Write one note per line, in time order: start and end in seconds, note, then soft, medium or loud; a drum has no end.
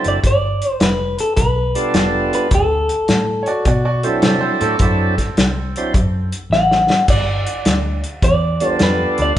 0.00 0.19 F#3 medium
0.00 0.20 C4 medium
0.00 0.20 D4 medium
0.00 0.20 E4 medium
0.00 0.20 A4 medium
0.04 0.18 F#1 medium
0.04 0.13 D5 loud
0.04 closed hi-hat medium
0.24 0.61 G1 medium
0.24 0.72 D5 loud
0.24 kick loud
0.24 closed hi-hat medium
0.62 closed hi-hat medium
0.72 0.82 C5 loud
0.80 1.18 F1 medium
0.80 1.20 B4 medium
0.80 snare loud
0.80 closed hi-hat medium
1.19 1.36 A4 medium
1.19 closed hi-hat medium
1.36 1.75 B1 medium
1.36 2.33 B4 medium
1.36 kick loud
1.36 closed hi-hat medium
1.75 2.48 G3 medium
1.75 2.48 B3 medium
1.75 2.48 D4 medium
1.75 2.48 F4 medium
1.75 2.48 A4 medium
1.75 closed hi-hat medium
1.94 2.32 F1 medium
1.94 snare loud
1.94 closed hi-hat medium
2.33 2.53 B4 medium
2.33 closed hi-hat medium
2.51 2.89 D2 medium
2.51 3.63 A4 medium
2.51 kick loud
2.51 closed hi-hat medium
2.89 closed hi-hat medium
3.08 3.46 A2 medium
3.08 snare medium
3.08 closed hi-hat medium
3.43 3.48 C#5 medium
3.43 closed hi-hat soft
3.47 3.65 F#4 medium
3.47 3.66 D5 medium
3.65 4.03 B2 medium
3.65 3.84 F#4 medium
3.65 3.84 D5 medium
3.65 kick loud
3.65 closed hi-hat medium
3.85 4.03 F#4 medium
3.85 4.04 D5 medium
4.03 4.77 F#3 medium
4.03 4.76 C4 medium
4.03 4.77 D4 medium
4.03 4.77 E4 medium
4.03 4.20 A4 medium
4.03 4.77 A4 medium
4.03 4.22 C5 medium
4.03 closed hi-hat medium
4.22 4.48 C3 medium
4.22 4.40 A4 medium
4.22 4.39 C5 medium
4.22 snare loud
4.22 closed hi-hat medium
4.41 4.59 A4 medium
4.41 4.60 C5 medium
4.61 4.74 A2 medium
4.61 6.28 C4 medium
4.61 6.28 A4 medium
4.61 closed hi-hat medium
4.79 5.17 F#2 medium
4.79 5.15 F#3 medium
4.79 5.15 C4 medium
4.79 5.15 D4 medium
4.79 5.15 E4 medium
4.79 5.16 A4 medium
4.79 kick loud
4.79 closed hi-hat medium
5.18 kick medium
5.18 snare soft
5.18 closed hi-hat medium
5.37 5.75 C2 medium
5.37 snare loud
5.37 closed hi-hat medium
5.76 5.93 F#3 medium
5.76 5.94 C4 medium
5.76 5.93 D4 medium
5.76 5.94 E4 medium
5.76 5.94 C5 medium
5.76 closed hi-hat medium
5.94 6.32 F#2 medium
5.94 kick loud
5.94 closed hi-hat medium
6.32 closed hi-hat medium
6.50 6.88 A1 medium
6.50 7.10 F#5 loud
6.50 snare medium
6.71 snare medium
6.90 snare medium
7.08 7.46 G1 medium
7.08 8.00 D5 medium
7.08 kick loud
7.08 closed hi-hat medium
7.08 crash medium
7.47 closed hi-hat medium
7.65 8.03 D2 medium
7.65 snare medium
7.65 closed hi-hat medium
8.04 closed hi-hat medium
8.22 8.60 E2 medium
8.22 8.69 D5 loud
8.22 kick loud
8.22 closed hi-hat medium
8.60 9.33 G3 medium
8.60 9.33 B3 medium
8.60 9.33 D4 medium
8.60 9.33 F4 medium
8.60 9.33 A4 medium
8.60 closed hi-hat medium
8.69 8.82 C5 loud
8.79 9.05 F2 medium
8.79 9.20 B4 loud
8.79 snare medium
8.79 closed hi-hat medium
9.18 9.31 D2 medium
9.18 closed hi-hat medium
9.22 9.38 D5 loud